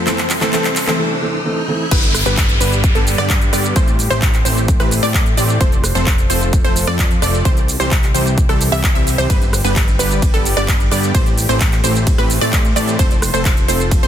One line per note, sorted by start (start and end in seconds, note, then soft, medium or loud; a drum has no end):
0.00 riser medium
0.06 0.98 C3 medium
0.06 0.20 E3 medium
0.06 0.19 E3 medium
0.06 0.98 G3 medium
0.06 0.20 A3 medium
0.06 0.19 A3 medium
0.06 0.19 C4 medium
0.06 0.20 C4 medium
0.06 0.98 E4 medium
0.06 0.19 A4 medium
0.06 0.20 A4 loud
0.06 0.19 C5 medium
0.06 0.98 C5 medium
0.06 clap medium
0.06 closed hi-hat medium
0.06 shaker soft
0.18 clap medium
0.18 closed hi-hat soft
0.18 shaker soft
0.30 clap loud
0.30 open hi-hat loud
0.30 shaker medium
0.41 0.51 E3 medium
0.41 0.51 A3 medium
0.41 0.51 C4 medium
0.41 0.51 A4 medium
0.41 0.51 A4 loud
0.41 0.51 C5 medium
0.41 clap medium
0.41 closed hi-hat soft
0.41 shaker soft
0.52 0.66 E3 medium
0.52 0.65 E3 medium
0.52 0.65 A3 medium
0.52 0.66 A3 medium
0.52 0.65 C4 medium
0.52 0.67 C4 medium
0.52 0.65 A4 medium
0.52 0.67 A4 loud
0.52 0.65 C5 loud
0.52 clap loud
0.52 closed hi-hat medium
0.52 shaker soft
0.64 clap medium
0.64 closed hi-hat soft
0.64 shaker soft
0.76 clap loud
0.76 open hi-hat loud
0.76 shaker medium
0.87 0.97 E3 loud
0.87 0.97 E3 medium
0.87 0.97 A3 medium
0.87 0.97 C4 medium
0.87 0.97 A4 medium
0.87 0.98 A4 loud
0.87 0.97 C5 medium
0.87 clap medium
0.87 closed hi-hat soft
0.87 shaker soft
0.99 1.12 E3 loud
0.99 1.12 A3 medium
0.99 1.13 C4 medium
0.99 1.13 A4 loud
1.22 1.35 E3 loud
1.22 1.36 A3 medium
1.22 1.36 C4 medium
1.22 1.36 A4 loud
1.45 1.58 E3 loud
1.45 1.59 A3 medium
1.45 1.59 C4 medium
1.45 1.59 A4 loud
1.68 1.81 E3 loud
1.68 1.82 A3 medium
1.68 1.82 C4 loud
1.68 1.82 A4 loud
1.91 2.24 G1 medium
1.91 2.04 D3 medium
1.91 2.04 G3 medium
1.91 3.74 G3 medium
1.91 2.04 B3 medium
1.91 2.04 G4 medium
1.91 5.57 G4 medium
1.91 2.04 B4 medium
1.91 3.74 B4 medium
1.91 3.74 D5 medium
1.91 kick loud
1.91 closed hi-hat medium
1.91 crash loud
1.91 downlifter medium
1.91 shaker soft
2.03 closed hi-hat soft
2.03 shaker soft
2.14 cross-stick medium
2.14 open hi-hat loud
2.14 shaker medium
2.26 2.58 G1 loud
2.26 2.39 D3 medium
2.26 2.39 G3 medium
2.26 2.39 B3 medium
2.26 2.39 G4 medium
2.26 2.39 B4 medium
2.26 closed hi-hat soft
2.26 shaker soft
2.37 kick loud
2.37 clap loud
2.37 closed hi-hat medium
2.37 shaker soft
2.49 closed hi-hat soft
2.49 shaker soft
2.61 2.93 G1 medium
2.61 2.73 D3 medium
2.61 2.73 G3 medium
2.61 2.73 B3 medium
2.61 2.73 G4 medium
2.61 2.73 B4 medium
2.61 open hi-hat loud
2.61 shaker medium
2.72 closed hi-hat soft
2.72 shaker soft
2.84 kick loud
2.84 closed hi-hat loud
2.84 shaker soft
2.95 3.16 G1 loud
2.95 3.08 D3 medium
2.95 3.08 G3 medium
2.95 3.08 B3 medium
2.95 3.08 G4 medium
2.95 3.08 A4 medium
2.95 closed hi-hat soft
2.95 shaker soft
3.07 open hi-hat loud
3.07 shaker medium
3.18 3.51 G2 loud
3.18 3.38 D3 loud
3.18 3.38 G3 medium
3.18 3.38 B3 medium
3.18 3.38 G4 medium
3.18 3.38 D5 loud
3.18 cross-stick medium
3.18 shaker soft
3.30 kick loud
3.30 clap loud
3.30 closed hi-hat medium
3.30 shaker soft
3.41 closed hi-hat soft
3.41 shaker soft
3.53 3.74 G2 loud
3.53 3.73 D3 medium
3.53 3.73 G3 medium
3.53 3.73 B3 medium
3.53 3.73 G4 medium
3.53 3.73 D5 medium
3.53 cross-stick medium
3.53 open hi-hat loud
3.53 shaker medium
3.64 closed hi-hat soft
3.64 shaker soft
3.76 4.08 A1 loud
3.76 3.89 E3 medium
3.76 3.89 A3 medium
3.76 5.59 A3 medium
3.76 3.89 C4 medium
3.76 5.59 E4 medium
3.76 3.89 G4 medium
3.76 3.89 C5 medium
3.76 7.42 C5 medium
3.76 kick loud
3.76 closed hi-hat loud
3.76 shaker soft
3.88 closed hi-hat soft
3.88 shaker soft
3.99 open hi-hat loud
3.99 shaker medium
4.10 4.43 A1 loud
4.10 4.23 E3 medium
4.10 4.23 A3 medium
4.10 4.23 C4 medium
4.10 4.23 G4 medium
4.10 4.23 C5 medium
4.10 closed hi-hat soft
4.10 shaker soft
4.22 kick loud
4.22 clap loud
4.22 closed hi-hat medium
4.22 shaker soft
4.34 clap soft
4.34 closed hi-hat soft
4.34 shaker soft
4.45 4.78 A1 medium
4.45 4.58 E3 medium
4.45 4.58 A3 medium
4.45 4.58 C4 medium
4.45 4.58 G4 medium
4.45 4.58 C5 medium
4.45 open hi-hat loud
4.45 shaker medium
4.57 closed hi-hat soft
4.57 shaker soft
4.68 kick loud
4.68 closed hi-hat loud
4.68 shaker soft
4.80 5.01 A1 loud
4.80 4.93 E3 medium
4.80 4.93 A3 medium
4.80 4.93 C4 medium
4.80 4.93 G4 medium
4.80 4.92 B4 medium
4.80 4.93 B4 medium
4.80 cross-stick medium
4.80 closed hi-hat soft
4.80 shaker soft
4.91 open hi-hat loud
4.91 shaker medium
5.03 5.35 A2 loud
5.03 5.23 E3 loud
5.03 5.23 A3 medium
5.03 5.23 C4 medium
5.03 5.23 G4 medium
5.03 5.23 D5 loud
5.03 open hi-hat medium
5.03 shaker soft
5.14 kick loud
5.14 clap loud
5.14 closed hi-hat medium
5.14 shaker soft
5.26 closed hi-hat soft
5.26 shaker soft
5.37 5.58 A2 loud
5.37 5.58 E3 medium
5.37 5.58 A3 medium
5.37 5.58 C4 medium
5.37 5.58 G4 medium
5.37 5.58 D5 medium
5.37 open hi-hat loud
5.37 shaker medium
5.49 closed hi-hat soft
5.49 shaker soft
5.61 5.93 F1 loud
5.61 5.73 F3 medium
5.61 7.43 F3 medium
5.61 5.73 A3 medium
5.61 7.43 F4 medium
5.61 5.73 A4 medium
5.61 7.43 A4 medium
5.61 5.73 C5 medium
5.61 kick loud
5.61 closed hi-hat medium
5.61 shaker soft
5.72 closed hi-hat soft
5.72 shaker soft
5.84 cross-stick medium
5.84 open hi-hat loud
5.84 shaker medium
5.95 6.28 F1 loud
5.95 6.08 F3 medium
5.95 6.08 A3 medium
5.95 6.08 C4 medium
5.95 6.08 A4 medium
5.95 6.08 C5 medium
5.95 closed hi-hat soft
5.95 shaker soft
6.07 kick loud
6.07 clap loud
6.07 closed hi-hat medium
6.07 shaker soft
6.18 closed hi-hat soft
6.18 shaker soft
6.30 6.62 F1 medium
6.30 6.42 F3 medium
6.30 6.43 A3 medium
6.30 6.43 C4 medium
6.30 6.43 A4 medium
6.30 6.42 C5 medium
6.30 6.43 C5 medium
6.30 open hi-hat loud
6.30 shaker medium
6.41 closed hi-hat soft
6.41 shaker soft
6.53 kick loud
6.53 closed hi-hat medium
6.53 shaker soft
6.64 6.85 F1 loud
6.64 6.77 F3 medium
6.64 6.77 A3 medium
6.64 6.77 C4 medium
6.64 6.77 A4 medium
6.64 6.77 C5 medium
6.64 closed hi-hat soft
6.64 shaker soft
6.76 open hi-hat loud
6.76 shaker medium
6.87 7.20 F2 loud
6.87 7.08 F3 loud
6.87 7.08 A3 medium
6.87 7.08 C4 medium
6.87 7.08 A4 medium
6.87 7.08 D5 loud
6.87 cross-stick medium
6.87 shaker soft
6.99 kick loud
6.99 clap loud
6.99 closed hi-hat medium
6.99 shaker soft
7.11 closed hi-hat soft
7.11 shaker soft
7.22 7.43 F1 loud
7.22 7.43 F3 medium
7.22 7.43 A3 medium
7.22 7.42 C4 medium
7.22 7.43 A4 medium
7.22 7.42 D5 medium
7.22 7.43 D5 medium
7.22 cross-stick medium
7.22 open hi-hat loud
7.22 shaker medium
7.34 closed hi-hat soft
7.34 shaker soft
7.45 7.78 C2 loud
7.45 9.28 C3 medium
7.45 7.58 E3 medium
7.45 7.58 G3 medium
7.45 7.58 C4 medium
7.45 9.28 C4 medium
7.45 9.28 E4 medium
7.45 7.58 G4 medium
7.45 12.95 G4 medium
7.45 7.58 C5 medium
7.45 kick loud
7.45 closed hi-hat medium
7.45 shaker soft
7.57 closed hi-hat soft
7.57 shaker soft
7.68 open hi-hat loud
7.68 shaker medium
7.80 8.12 C2 loud
7.80 7.92 E3 medium
7.80 7.92 G3 medium
7.80 7.92 C4 medium
7.80 7.92 G4 medium
7.80 7.92 C5 medium
7.80 closed hi-hat soft
7.80 shaker soft
7.91 kick loud
7.91 clap loud
7.91 closed hi-hat medium
7.91 shaker soft
8.03 clap soft
8.03 closed hi-hat soft
8.03 shaker soft
8.14 8.47 C2 medium
8.14 8.27 E3 medium
8.14 8.27 G3 medium
8.14 8.27 C4 medium
8.14 8.27 G4 medium
8.14 8.27 C5 medium
8.14 open hi-hat loud
8.14 shaker medium
8.26 closed hi-hat soft
8.26 shaker soft
8.38 kick loud
8.38 closed hi-hat medium
8.38 shaker soft
8.49 8.70 C2 loud
8.49 8.62 E3 medium
8.49 8.62 G3 medium
8.49 8.62 C4 medium
8.49 8.62 G4 medium
8.49 8.62 A4 medium
8.49 cross-stick medium
8.49 closed hi-hat soft
8.49 shaker soft
8.61 open hi-hat loud
8.61 shaker medium
8.72 8.93 C2 medium
8.72 8.85 E3 medium
8.72 8.85 G3 medium
8.72 8.85 C4 medium
8.72 8.85 G4 medium
8.72 8.85 E5 medium
8.72 open hi-hat medium
8.72 shaker soft
8.84 kick loud
8.84 clap loud
8.84 closed hi-hat medium
8.84 shaker soft
8.95 9.16 C2 medium
8.95 9.16 E3 medium
8.95 9.16 G3 medium
8.95 9.16 C4 medium
8.95 9.16 G4 medium
8.95 9.16 E5 medium
8.95 closed hi-hat soft
8.95 shaker soft
9.07 open hi-hat loud
9.07 shaker medium
9.18 9.28 C2 loud
9.18 9.27 E3 loud
9.18 9.27 G3 medium
9.18 9.27 C4 medium
9.18 9.27 G4 medium
9.18 9.27 C5 loud
9.18 shaker soft
9.30 9.62 G1 loud
9.30 9.42 D3 medium
9.30 9.42 G3 medium
9.30 11.13 G3 medium
9.30 9.42 B3 medium
9.30 9.42 G4 medium
9.30 11.13 B4 medium
9.30 9.42 B4 medium
9.30 11.13 D5 medium
9.30 kick loud
9.30 closed hi-hat medium
9.30 ride medium
9.30 shaker soft
9.42 closed hi-hat soft
9.42 shaker soft
9.53 cross-stick medium
9.53 open hi-hat loud
9.53 shaker medium
9.64 9.97 G1 loud
9.64 9.77 D3 medium
9.64 9.77 G3 medium
9.64 9.77 B3 medium
9.64 9.77 G4 medium
9.64 9.77 B4 medium
9.64 closed hi-hat soft
9.64 shaker soft
9.76 kick loud
9.76 clap loud
9.76 closed hi-hat medium
9.76 ride medium
9.76 shaker soft
9.88 closed hi-hat soft
9.88 shaker soft
9.99 10.31 G1 loud
9.99 10.12 D3 medium
9.99 10.12 G3 medium
9.99 10.12 B3 medium
9.99 10.12 G4 medium
9.99 10.12 B4 medium
9.99 open hi-hat loud
9.99 shaker medium
10.11 closed hi-hat soft
10.11 shaker soft
10.22 kick loud
10.22 closed hi-hat medium
10.22 ride medium
10.22 shaker soft
10.34 10.55 G1 medium
10.34 10.46 D3 medium
10.34 10.46 G3 medium
10.34 10.46 B3 medium
10.34 10.46 G4 medium
10.34 10.46 A4 medium
10.34 closed hi-hat soft
10.34 shaker soft
10.45 open hi-hat loud
10.45 shaker medium
10.57 10.89 G1 loud
10.57 10.77 D3 loud
10.57 10.77 G3 medium
10.57 10.77 B3 medium
10.57 10.77 G4 medium
10.57 10.77 D5 loud
10.57 cross-stick medium
10.57 shaker soft
10.68 kick loud
10.68 clap loud
10.68 closed hi-hat medium
10.68 ride medium
10.68 shaker soft
10.80 closed hi-hat soft
10.80 shaker soft
10.91 11.12 G2 loud
10.91 11.12 D3 medium
10.91 11.12 G3 medium
10.91 11.12 B3 medium
10.91 11.12 G4 medium
10.91 11.12 D5 medium
10.91 cross-stick medium
10.91 open hi-hat loud
10.91 shaker medium
11.03 closed hi-hat soft
11.03 shaker soft
11.14 11.47 A1 loud
11.14 11.27 E3 medium
11.14 11.27 A3 medium
11.14 12.97 A3 medium
11.14 11.27 C4 medium
11.14 12.97 E4 medium
11.14 11.27 G4 medium
11.14 11.27 C5 medium
11.14 11.27 C5 loud
11.14 14.08 C5 medium
11.14 kick loud
11.14 closed hi-hat medium
11.14 ride medium
11.14 shaker soft
11.26 closed hi-hat soft
11.26 shaker soft
11.38 open hi-hat loud
11.38 shaker medium
11.49 11.81 A1 loud
11.49 11.62 E3 medium
11.49 11.62 A3 medium
11.49 11.62 C4 medium
11.49 11.62 G4 medium
11.49 11.62 C5 medium
11.49 closed hi-hat soft
11.49 shaker soft
11.61 kick loud
11.61 clap loud
11.61 closed hi-hat medium
11.61 ride medium
11.61 shaker soft
11.72 clap soft
11.72 closed hi-hat soft
11.72 shaker soft
11.84 12.16 A1 loud
11.84 11.96 E3 medium
11.84 11.96 A3 medium
11.84 11.96 C4 medium
11.84 11.96 G4 medium
11.84 11.96 C5 medium
11.84 open hi-hat loud
11.84 shaker medium
11.95 closed hi-hat soft
11.95 shaker soft
12.07 kick loud
12.07 closed hi-hat loud
12.07 ride medium
12.07 shaker soft
12.18 12.39 A1 medium
12.18 12.31 E3 medium
12.18 12.31 A3 medium
12.18 12.31 C4 medium
12.18 12.31 G4 medium
12.18 12.31 B4 medium
12.18 cross-stick medium
12.18 closed hi-hat soft
12.18 shaker soft
12.30 open hi-hat loud
12.30 shaker medium
12.41 12.74 A2 loud
12.41 12.62 E3 loud
12.41 12.62 A3 medium
12.41 12.62 C4 medium
12.41 12.62 G4 medium
12.41 12.62 D5 loud
12.41 open hi-hat medium
12.41 shaker soft
12.53 kick loud
12.53 clap loud
12.53 closed hi-hat medium
12.53 ride medium
12.53 shaker soft
12.65 closed hi-hat soft
12.65 shaker soft
12.76 12.97 A2 loud
12.76 12.96 E3 medium
12.76 12.96 A3 medium
12.76 12.96 C4 medium
12.76 12.96 G4 medium
12.76 12.96 D5 medium
12.76 open hi-hat loud
12.76 shaker medium
12.88 closed hi-hat soft
12.88 shaker soft
12.99 13.31 F1 loud
12.99 13.12 F3 medium
12.99 14.08 F3 medium
12.99 13.12 A3 medium
12.99 13.12 C4 medium
12.99 14.08 F4 medium
12.99 13.12 A4 medium
12.99 14.08 A4 medium
12.99 13.12 C5 medium
12.99 13.12 C5 loud
12.99 kick loud
12.99 closed hi-hat loud
12.99 ride medium
12.99 shaker medium
13.11 closed hi-hat soft
13.11 shaker soft
13.22 cross-stick medium
13.22 open hi-hat loud
13.22 shaker medium
13.34 13.66 F1 loud
13.34 13.46 F3 medium
13.34 13.46 A3 medium
13.34 13.46 C4 medium
13.34 13.46 A4 medium
13.34 13.46 C5 medium
13.34 closed hi-hat soft
13.34 shaker soft
13.45 kick loud
13.45 clap loud
13.45 closed hi-hat loud
13.45 ride medium
13.45 shaker soft
13.57 closed hi-hat soft
13.57 shaker soft
13.68 14.01 F1 medium
13.68 13.81 F3 medium
13.68 13.81 A3 medium
13.68 13.81 C4 medium
13.68 13.81 A4 medium
13.68 13.81 C5 medium
13.68 open hi-hat loud
13.68 shaker medium
13.80 closed hi-hat soft
13.80 shaker soft
13.91 kick loud
13.91 closed hi-hat medium
13.91 ride medium
13.91 shaker soft
14.03 14.08 F1 loud
14.03 14.08 F3 medium
14.03 14.08 A3 medium
14.03 14.08 C4 medium
14.03 14.08 A4 medium
14.03 14.08 C5 medium
14.03 closed hi-hat soft
14.03 shaker soft